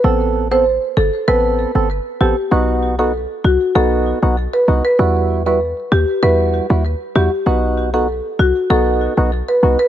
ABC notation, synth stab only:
X:1
M:4/4
L:1/16
Q:1/4=97
K:Bphr
V:1 name="Synth stab"
[B,CA]3 [B,CA] z4 [B,CA]3 [B,CA] z2 [B,CA] z | [B,^DF]3 [B,DF] z4 [B,DF]3 [B,DF] z2 [B,DF] z | [G,EF]3 [G,EF] z4 [G,EF]3 [G,EF] z2 [G,EF] z | [B,^DF]3 [B,DF] z4 [B,DF]3 [B,DF] z2 [B,DF] z |]